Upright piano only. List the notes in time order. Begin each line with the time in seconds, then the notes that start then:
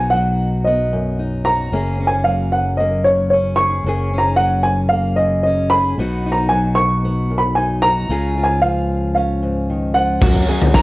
Already playing: G#5
0.10 F#5
0.64 D#5
1.45 A#5
2.07 G#5
2.24 F5
2.52 F#5
2.77 D#5
3.04 C#5
3.30 C#5
3.56 C#6
4.18 A#5
4.36 F#5
4.63 G#5
4.89 F5
5.16 D#5
5.43 D#5
5.70 B5
6.32 A#5
6.49 G#5
6.75 C#6
7.38 B5
7.55 G#5
7.82 A#5
8.44 G#5
8.62 F5
9.15 F5
9.94 F#5
10.74 A#5